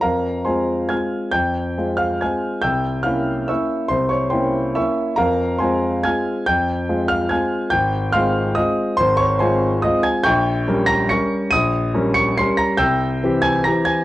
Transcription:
\new Staff \with { instrumentName = "Grand piano" } { \time 3/4 \key f \minor \tempo 4 = 141 << { <bes' f'' bes''>4 <c'' aes'' c'''>4 <aes'' f''' aes'''>4 | <g'' g'''>4. <f'' f'''>8 <aes'' f''' aes'''>4 | <g'' e''' g'''>4 <f'' f'''>4 <e'' des''' e'''>4 | <c'' c'''>8 <des'' des'''>8 <c'' g'' c'''>4 <e'' des''' e'''>4 |
<bes' f'' bes''>4 <c'' aes'' c'''>4 <aes'' f''' aes'''>4 | <g'' g'''>4. <f'' f'''>8 <aes'' f''' aes'''>4 | <g'' g'''>4 <f'' c''' f'''>4 <ees'' ees'''>4 | <c'' c'''>8 <des'' des'''>8 <c'' aes'' c'''>4 <ees'' ees'''>8 <aes'' aes'''>8 |
<g'' des''' g'''>4. <bes'' bes'''>8 <des''' bes''' des''''>4 | <ees''' ees''''>4. <des''' des''''>8 <c''' c''''>8 <bes'' bes'''>8 | <g'' e''' g'''>4. <aes'' aes'''>8 <bes'' bes'''>8 <aes'' aes'''>8 | } \\ { f,4 <aes c' f'>4 <aes c' f'>4 | f,4 <aes c' f'>4 <aes c' f'>4 | c,4 <bes des' e'>4 <bes des' e'>4 | c,4 <bes des' e'>4 <bes des' e'>4 |
f,4 <aes c' f'>4 <aes c' f'>4 | f,4 <aes c' f'>4 <aes c' f'>4 | aes,,4 <aes c' f'>4 <aes c' f'>4 | aes,,4 <aes c' f'>4 <aes c' f'>4 |
bes,,4 <g des' bes'>4 <g des' bes'>4 | bes,,4 <g des' bes'>4 <g des' bes'>4 | c,4 <e c' g'>4 <e c' g'>4 | } >> }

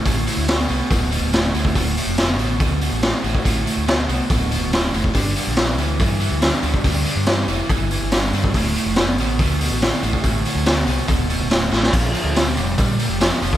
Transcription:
<<
  \new Staff \with { instrumentName = "Overdriven electric guitar" } { \clef bass \time 4/4 \key d \minor \tempo 4 = 141 <d, a,>8 <d, a,>8 <d, b,>8 <d, b,>8 <d, b,>8 <d, b,>8 <d, a,>8 <d, a,>8 | <d, a,>8 <d, a,>8 <d, b,>8 <d, b,>8 <d, b,>8 <d, b,>8 <d, a,>8 <d, a,>8 | <d, a,>8 <d, a,>8 <d, b,>8 <d, b,>8 <d, b,>8 <d, b,>8 <d, a,>8 <d, a,>8 | <g, d>8 <g, d>8 <g, e>8 <g, e>8 <g, e>8 <g, e>8 <g, d>8 <g, d>8 |
<g, d>8 <g, d>8 <g, e>8 <g, e>8 <g, e>8 <g, e>8 <g, d>8 <g, d>8 | <d, a,>8 <d, a,>8 <d, b,>8 <d, b,>8 <d, b,>8 <d, b,>8 <d, a,>8 <d, a,>8 | <d, a,>8 <d, a,>8 <d, b,>8 <d, b,>8 <d, b,>8 <d, b,>8 <d, a,>8 <d, a,>8 | <bes, f>8 <bes, f>8 <bes, g>8 <bes, g>8 <bes, g>8 <bes, g>8 <bes, f>8 <bes, f>8 | }
  \new Staff \with { instrumentName = "Fingered electric bass" } { \clef bass \time 4/4 \key d \minor a,,8 r16 d,8. c,16 r16 d,,8. d,,8. d,8 | d,,8 r16 f,,8. a,,8 d,8. a,,8 r16 a,,16 r16 | a,,8 r16 d,8. c,16 r16 d,,8. d,,8. f,,8 | g,,8 r16 bes,,8. d,8 g,8. d,8 r16 d,16 r16 |
d,8 r16 g,8. f,,16 r16 g,,8. g,,8. g,8 | d,,8 r16 f,,8. a,,8 d,8. a,,8 r16 a,,16 r16 | a,,8 r16 d,8. c,16 r16 d,,8. d,,8. a,,8 | bes,,8 r16 d,8. f,,8 bes,8. f,,8 r16 f,,16 r16 | }
  \new DrumStaff \with { instrumentName = "Drums" } \drummode { \time 4/4 <hho bd>8 hho8 <hho sn>8 hho8 <hho bd>8 hho8 <hho sn>8 hho16 bd16 | <hho bd>8 hho8 <hho sn>8 hho8 <hho bd>8 hho8 <hho sn>8 hho16 bd16 | <hho bd>8 hho8 <hho sn>8 hho8 <hho bd>8 hho8 <hho sn>8 hho16 bd16 | <hho bd>8 hho8 <hho sn>8 hho8 <hho bd>8 hho8 <hho sn>8 hho16 bd16 |
<hho bd>8 hho8 <hho sn>8 hho8 <hho bd>8 hho8 <hho sn>8 hho16 bd16 | <hho bd>8 hho8 <hho sn>8 hho8 <hho bd>8 hho8 <hho sn>8 hho16 bd16 | <hho bd>8 hho8 <hho sn>8 hho8 <hho bd>8 hho8 <hho sn>8 sn16 sn16 | <cymc hho bd>8 hho8 <hho sn>8 hho8 <hho bd>8 hho8 <hho sn>8 hho16 bd16 | }
>>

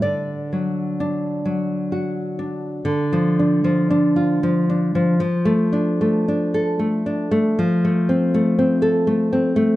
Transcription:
\new Staff \with { instrumentName = "Nylon-string guitar" } { \time 3/4 \key d \major \tempo 4 = 76 << { d''2 r4 | \key d \minor r2. | r2. | r2. | } \\ { d8 fis8 d'8 fis8 fis'8 d'8 | \tuplet 3/2 { d8 f8 d'8 f8 d'8 f'8 f8 d'8 f8 } | \tuplet 3/2 { f8 a8 d'8 a8 d'8 a'8 a8 d'8 a8 } | \tuplet 3/2 { f8 a8 c'8 a8 c'8 a'8 a8 c'8 a8 } | } >> }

